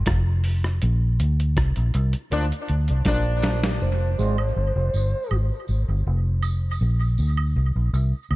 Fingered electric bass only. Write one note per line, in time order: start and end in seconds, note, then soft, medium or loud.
0.07 0.79 F1 loud
0.83 1.18 A#1 loud
1.20 1.55 D2 medium
1.57 1.76 C2 medium
1.77 1.94 A#1 medium
1.95 2.13 C2 medium
2.32 2.50 D2 loud
2.70 2.88 D2 medium
2.90 3.05 C2 medium
3.06 3.77 A#1 medium
3.82 4.17 F1 medium
4.19 4.54 G#1 medium
4.56 4.75 G1 medium
4.76 4.93 F1 medium
4.94 5.12 G1 medium
5.31 5.50 G#1 medium
5.69 5.87 G#1 medium
5.88 6.05 G1 medium
6.07 6.77 F1 medium
6.81 7.16 A#1 medium
7.19 7.54 D2 medium
7.56 7.74 C2 medium
7.76 7.92 A#1 medium
7.93 8.12 C2 medium
8.31 8.36 D2 loud